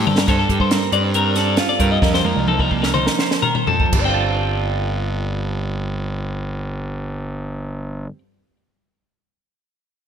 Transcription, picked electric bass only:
0.07 0.26 G2 medium
0.28 0.44 G2 medium
0.49 0.57 G2 medium
0.60 0.76 G2 medium
0.92 1.58 G2 medium
1.80 1.97 G2 medium
2.02 2.19 F2 medium
2.24 2.33 F2 medium
2.36 3.07 C2 medium
3.67 3.86 F2 medium
3.92 8.06 G1 medium

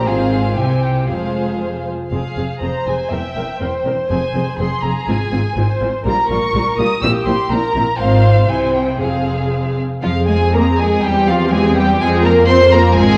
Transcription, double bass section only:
0.07 0.57 G#1 medium
0.57 1.09 C2 medium
1.09 1.91 F1 soft
2.11 2.19 F1 medium
2.37 2.45 F1 soft
2.61 2.69 F1 soft
2.87 2.95 F1 soft
3.11 3.19 E1 medium
3.36 3.44 E1 soft
3.60 3.68 E1 soft
3.85 3.93 E1 soft
4.10 4.18 F1 medium
4.34 4.42 F1 medium
4.59 4.67 F1 medium
4.83 4.91 F1 medium
5.08 5.16 G#1 medium
5.32 5.40 G#1 medium
5.57 5.65 G#1 medium
5.81 5.89 G#1 medium
6.05 6.13 A#1 medium
6.30 6.38 A#1 medium
6.54 6.62 A#1 medium
6.78 6.86 A#1 medium
7.02 7.10 A#1 medium
7.25 7.33 A#1 medium
7.50 7.58 A#1 medium
7.74 7.82 A#1 medium
7.99 8.46 G#1 medium
8.50 8.99 C2 medium
9.00 9.82 F1 medium
10.03 10.98 F2 medium
11.02 12.00 E2 medium
12.01 12.95 F2 medium
12.96 13.18 G#1 loud

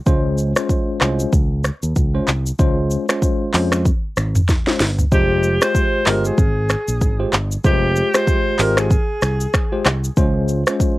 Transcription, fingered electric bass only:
0.07 0.52 C#2 loud
1.01 1.24 C2 medium
1.33 1.69 C#2 medium
1.83 1.92 D#2 medium
1.96 2.19 C#2 medium
2.28 2.50 C2 loud
2.59 2.95 C#2 loud
3.54 3.90 F2 medium
4.17 4.40 G#1 loud
4.80 5.03 G1 medium
5.12 5.58 F1 loud
6.07 6.29 G1 medium
6.38 6.74 G#1 medium
6.88 7.01 A#1 medium
7.01 7.24 G#1 medium
7.33 7.56 G1 loud
7.64 8.01 F1 loud
8.59 8.95 G#1 medium
9.22 9.45 C2 medium
9.86 10.08 C2 loud
10.17 10.63 C#2 loud

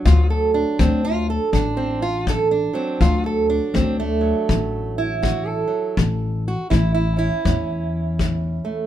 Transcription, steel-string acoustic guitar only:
0.00 2.72 F#3 soft
0.05 0.74 D2 medium
0.05 0.30 F4 loud
0.30 0.54 A4 medium
0.54 1.04 D4 medium
0.79 1.49 D2 medium
0.79 1.04 C4 medium
1.05 1.29 F4 medium
1.30 1.53 A4 medium
1.53 2.22 D2 medium
1.53 2.02 D4 medium
1.77 2.02 C4 medium
2.02 2.27 F4 medium
2.27 2.95 D2 medium
2.27 2.51 A4 medium
2.51 3.01 D4 medium
2.73 4.20 F#3 soft
2.73 3.00 C4 medium
3.01 3.69 D2 medium
3.01 3.26 F4 medium
3.26 3.49 A4 medium
3.50 4.49 D4 medium
3.75 4.43 D2 medium
3.75 3.99 C4 medium
4.00 4.98 A3 medium
4.21 5.66 F#3 soft
4.49 5.17 D2 medium
4.98 5.97 E4 medium
5.23 5.91 D2 medium
5.23 5.47 F#4 medium
5.47 6.46 A4 medium
5.68 5.97 F#3 soft
5.98 6.66 A2 medium
6.48 6.70 F#4 medium
6.70 7.40 A2 medium
6.70 6.93 E4 medium
6.94 7.17 E4 medium
7.17 7.45 C#4 soft
7.17 8.87 E4 loud
7.45 8.13 A2 medium
7.45 8.87 C#4 soft
8.21 8.87 A2 medium
8.65 8.87 A3 soft

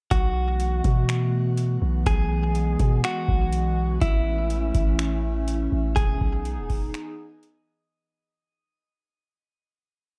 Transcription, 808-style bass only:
0.11 0.81 B1 loud
0.84 1.78 B2 loud
1.82 2.05 B1 loud
2.06 2.77 B1 loud
2.80 3.03 B2 loud
3.28 3.99 B1 loud
4.01 4.72 A1 loud
4.75 5.68 A1 loud
5.72 5.96 A1 loud
5.97 6.20 E1 loud
6.21 6.59 B1 loud
6.58 6.69 D#1 loud
6.70 6.93 E1 loud

